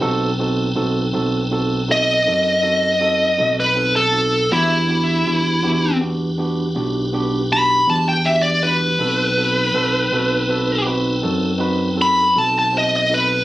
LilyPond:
<<
  \new Staff \with { instrumentName = "Lead electric guitar" } { \time 12/8 \key b \phrygian \tempo 4. = 54 r2 r8 dis''2~ dis''16 b'8 a'8. | e'2 r2 b''8 a''16 g''16 e''16 d''16 b'8~ | b'2~ b'8 r4. b''8 a''16 a''16 dis''16 dis''16 b'8 | }
  \new Staff \with { instrumentName = "Tonewheel organ" } { \time 12/8 \key b \phrygian <c' dis' a' b'>1. | <d' e' g' b'>1. | <c' dis' a' b'>1. | }
  \new Staff \with { instrumentName = "Tine electric piano" } { \time 12/8 \key b \phrygian <c' dis' fis' a'>8 <c' dis' fis' a'>8 <c' dis' fis' a'>8 <c' dis' fis' a'>8 <c' dis' fis' a'>8 <c' dis' fis' a'>8 <c' dis' fis' a'>8 <c' dis' fis' a'>8 <c' dis' fis' a'>8 <c' dis' fis' a'>8 <c' dis' fis' a'>8 <c' dis' fis' a'>8 | <b d' fis' g'>8 <b d' fis' g'>8 <b d' fis' g'>8 <b d' fis' g'>8 <b d' fis' g'>8 <b d' fis' g'>8 <b d' fis' g'>8 <b d' fis' g'>8 <b d' fis' g'>8 <b d' fis' g'>8 <b d' fis' g'>8 <b d' fis' g'>8 | <c' dis' fis' a'>8 <c' dis' fis' a'>8 <c' dis' fis' a'>8 <c' dis' fis' a'>8 <c' dis' fis' a'>8 <c' dis' fis' b'>8 <c' dis' fis' a'>8 <c' dis' fis' b'>8 <c' dis' fis' a'>8 <c' dis' fis' a'>8 <c' dis' fis' c''>8 <c' dis' fis' a'>8 | }
  \new Staff \with { instrumentName = "Fingered electric bass" } { \clef bass \time 12/8 \key b \phrygian b,,4 b,,8 b,,4. fis,4. b,,4. | e,4 e,8 e,4. b,,4. e,4. | b,,4 b,,8 b,,4. fis,4. b,,4. | }
>>